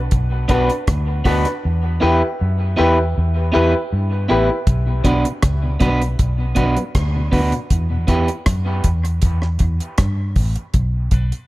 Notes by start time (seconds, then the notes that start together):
0.11 B1, kick, closed hi-hat
0.48 B1 B3 D4 F#4 B4, kick, closed hi-hat
0.70 closed hi-hat
0.87 D2, kick, cross-stick, closed hi-hat
1.25 D2 B3 D4 F#4 B4, kick, open hi-hat
1.45 cross-stick, closed hi-hat
1.65 E2
2.00 E2 B3 E4 G4 B4
2.41 F#2
2.77 E2 B3 E4 G4 B4
3.18 E2
3.36 G4 B4
3.52 E2 B3 E4 G4 B4
3.93 G2
4.28 A1 B3 E4 G4 B4
4.50 G4 B4
4.67 B1, kick, closed hi-hat
4.87 B2
5.04 B1 D3 F#3 B3 D4 F#4 B4, kick, closed hi-hat
5.25 B2, closed hi-hat
5.42 C#2, kick, cross-stick, closed hi-hat
5.63 B2
5.80 B1 D3 F#3 B3 D4 F#4 B4, kick, closed hi-hat
6.01 B2, closed hi-hat
6.19 B1, kick, closed hi-hat
6.38 B2
6.55 B1 D3 F#3 B3 D4 F#4 B4, kick, closed hi-hat
6.76 F#3 B3, closed hi-hat
6.95 D2, kick, cross-stick, closed hi-hat
7.15 B2
7.32 D2 D3 F#3 B3 D4 F#4 B4, kick, open hi-hat
7.52 B2, closed hi-hat
7.70 E2, kick, closed hi-hat
7.90 E2 B2
8.07 E2 B3 E4 G4 B4, kick, closed hi-hat
8.28 closed hi-hat
8.46 F#2, kick, cross-stick, closed hi-hat
8.84 E2, kick, closed hi-hat
9.05 closed hi-hat
9.22 E2, kick, closed hi-hat
9.42 cross-stick
9.59 E2, kick, closed hi-hat
9.80 closed hi-hat
9.98 G2, kick, cross-stick, closed hi-hat
10.36 A1, kick, open hi-hat
10.56 closed hi-hat
10.74 B1, kick, closed hi-hat
11.11 B1 D4 F#4 B4, kick, closed hi-hat
11.32 closed hi-hat